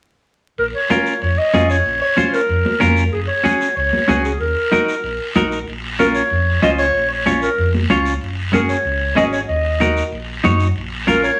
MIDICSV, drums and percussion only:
0, 0, Header, 1, 2, 480
1, 0, Start_track
1, 0, Key_signature, -5, "minor"
1, 0, Tempo, 317965
1, 880, Time_signature, 4, 2, 24, 8
1, 17206, End_track
2, 0, Start_track
2, 0, Title_t, "Drums"
2, 879, Note_on_c, 9, 74, 62
2, 1030, Note_off_c, 9, 74, 0
2, 1360, Note_on_c, 9, 73, 58
2, 1365, Note_on_c, 9, 63, 72
2, 1511, Note_off_c, 9, 73, 0
2, 1515, Note_off_c, 9, 63, 0
2, 1598, Note_on_c, 9, 73, 61
2, 1749, Note_off_c, 9, 73, 0
2, 1838, Note_on_c, 9, 74, 66
2, 1989, Note_off_c, 9, 74, 0
2, 2320, Note_on_c, 9, 73, 55
2, 2324, Note_on_c, 9, 63, 76
2, 2471, Note_off_c, 9, 73, 0
2, 2475, Note_off_c, 9, 63, 0
2, 2563, Note_on_c, 9, 73, 59
2, 2714, Note_off_c, 9, 73, 0
2, 2808, Note_on_c, 9, 74, 64
2, 2959, Note_off_c, 9, 74, 0
2, 3278, Note_on_c, 9, 73, 55
2, 3285, Note_on_c, 9, 63, 77
2, 3429, Note_off_c, 9, 73, 0
2, 3436, Note_off_c, 9, 63, 0
2, 3527, Note_on_c, 9, 73, 59
2, 3678, Note_off_c, 9, 73, 0
2, 3763, Note_on_c, 9, 74, 65
2, 3913, Note_off_c, 9, 74, 0
2, 4007, Note_on_c, 9, 63, 60
2, 4158, Note_off_c, 9, 63, 0
2, 4239, Note_on_c, 9, 73, 62
2, 4252, Note_on_c, 9, 63, 76
2, 4390, Note_off_c, 9, 73, 0
2, 4403, Note_off_c, 9, 63, 0
2, 4479, Note_on_c, 9, 73, 60
2, 4630, Note_off_c, 9, 73, 0
2, 4724, Note_on_c, 9, 74, 62
2, 4875, Note_off_c, 9, 74, 0
2, 5208, Note_on_c, 9, 73, 58
2, 5210, Note_on_c, 9, 63, 67
2, 5359, Note_off_c, 9, 73, 0
2, 5361, Note_off_c, 9, 63, 0
2, 5449, Note_on_c, 9, 73, 58
2, 5600, Note_off_c, 9, 73, 0
2, 5690, Note_on_c, 9, 74, 63
2, 5841, Note_off_c, 9, 74, 0
2, 5932, Note_on_c, 9, 63, 64
2, 6083, Note_off_c, 9, 63, 0
2, 6173, Note_on_c, 9, 63, 79
2, 6174, Note_on_c, 9, 73, 56
2, 6324, Note_off_c, 9, 63, 0
2, 6325, Note_off_c, 9, 73, 0
2, 6406, Note_on_c, 9, 73, 61
2, 6557, Note_off_c, 9, 73, 0
2, 6651, Note_on_c, 9, 74, 67
2, 6802, Note_off_c, 9, 74, 0
2, 7130, Note_on_c, 9, 73, 54
2, 7131, Note_on_c, 9, 63, 69
2, 7281, Note_off_c, 9, 73, 0
2, 7282, Note_off_c, 9, 63, 0
2, 7373, Note_on_c, 9, 73, 55
2, 7524, Note_off_c, 9, 73, 0
2, 7607, Note_on_c, 9, 74, 66
2, 7758, Note_off_c, 9, 74, 0
2, 8077, Note_on_c, 9, 73, 56
2, 8089, Note_on_c, 9, 63, 84
2, 8228, Note_off_c, 9, 73, 0
2, 8240, Note_off_c, 9, 63, 0
2, 8326, Note_on_c, 9, 73, 62
2, 8477, Note_off_c, 9, 73, 0
2, 8568, Note_on_c, 9, 74, 62
2, 8719, Note_off_c, 9, 74, 0
2, 9045, Note_on_c, 9, 63, 68
2, 9045, Note_on_c, 9, 73, 59
2, 9196, Note_off_c, 9, 63, 0
2, 9196, Note_off_c, 9, 73, 0
2, 9279, Note_on_c, 9, 73, 62
2, 9430, Note_off_c, 9, 73, 0
2, 9513, Note_on_c, 9, 74, 62
2, 9664, Note_off_c, 9, 74, 0
2, 10002, Note_on_c, 9, 73, 60
2, 10003, Note_on_c, 9, 63, 73
2, 10153, Note_off_c, 9, 73, 0
2, 10154, Note_off_c, 9, 63, 0
2, 10242, Note_on_c, 9, 73, 57
2, 10393, Note_off_c, 9, 73, 0
2, 10487, Note_on_c, 9, 74, 64
2, 10638, Note_off_c, 9, 74, 0
2, 10965, Note_on_c, 9, 73, 63
2, 10967, Note_on_c, 9, 63, 78
2, 11116, Note_off_c, 9, 73, 0
2, 11118, Note_off_c, 9, 63, 0
2, 11205, Note_on_c, 9, 73, 56
2, 11356, Note_off_c, 9, 73, 0
2, 11449, Note_on_c, 9, 74, 65
2, 11599, Note_off_c, 9, 74, 0
2, 11689, Note_on_c, 9, 63, 65
2, 11840, Note_off_c, 9, 63, 0
2, 11922, Note_on_c, 9, 63, 77
2, 11922, Note_on_c, 9, 73, 57
2, 12073, Note_off_c, 9, 63, 0
2, 12073, Note_off_c, 9, 73, 0
2, 12159, Note_on_c, 9, 73, 65
2, 12310, Note_off_c, 9, 73, 0
2, 12400, Note_on_c, 9, 74, 65
2, 12551, Note_off_c, 9, 74, 0
2, 12880, Note_on_c, 9, 73, 60
2, 12889, Note_on_c, 9, 63, 72
2, 13031, Note_off_c, 9, 73, 0
2, 13040, Note_off_c, 9, 63, 0
2, 13121, Note_on_c, 9, 73, 59
2, 13272, Note_off_c, 9, 73, 0
2, 13360, Note_on_c, 9, 74, 61
2, 13511, Note_off_c, 9, 74, 0
2, 13843, Note_on_c, 9, 73, 60
2, 13850, Note_on_c, 9, 63, 68
2, 13994, Note_off_c, 9, 73, 0
2, 14001, Note_off_c, 9, 63, 0
2, 14082, Note_on_c, 9, 73, 64
2, 14233, Note_off_c, 9, 73, 0
2, 14329, Note_on_c, 9, 74, 65
2, 14480, Note_off_c, 9, 74, 0
2, 14805, Note_on_c, 9, 73, 60
2, 14811, Note_on_c, 9, 63, 69
2, 14956, Note_off_c, 9, 73, 0
2, 14962, Note_off_c, 9, 63, 0
2, 15047, Note_on_c, 9, 73, 57
2, 15198, Note_off_c, 9, 73, 0
2, 15283, Note_on_c, 9, 74, 58
2, 15434, Note_off_c, 9, 74, 0
2, 15761, Note_on_c, 9, 73, 62
2, 15771, Note_on_c, 9, 63, 78
2, 15912, Note_off_c, 9, 73, 0
2, 15922, Note_off_c, 9, 63, 0
2, 15997, Note_on_c, 9, 73, 55
2, 16148, Note_off_c, 9, 73, 0
2, 16240, Note_on_c, 9, 74, 58
2, 16391, Note_off_c, 9, 74, 0
2, 16722, Note_on_c, 9, 73, 67
2, 16731, Note_on_c, 9, 63, 70
2, 16873, Note_off_c, 9, 73, 0
2, 16882, Note_off_c, 9, 63, 0
2, 16962, Note_on_c, 9, 73, 59
2, 17113, Note_off_c, 9, 73, 0
2, 17206, End_track
0, 0, End_of_file